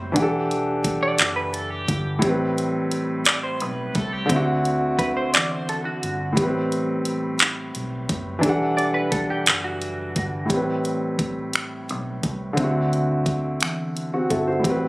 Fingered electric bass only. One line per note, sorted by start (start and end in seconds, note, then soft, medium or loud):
0.00 0.13 F#1 medium
0.17 1.16 E1 loud
1.20 1.85 F#1 loud
1.89 2.20 G1 medium
2.23 3.61 A1 loud
3.61 3.92 B1 medium
3.96 4.27 C2 loud
4.30 5.34 D2 medium
5.34 5.99 E2 medium
6.04 6.34 G1 loud
6.38 7.71 A1 loud
7.76 8.06 B1 medium
8.10 8.40 F#1 medium
8.44 9.43 E1 loud
9.48 10.12 F#1 loud
10.17 10.47 G1 medium
10.51 11.90 A1 medium
11.90 12.20 B1 medium
12.24 12.55 C2 medium
12.58 13.62 D2 medium
13.62 14.26 E2 medium
14.31 14.61 G1 medium
14.65 14.88 A1 loud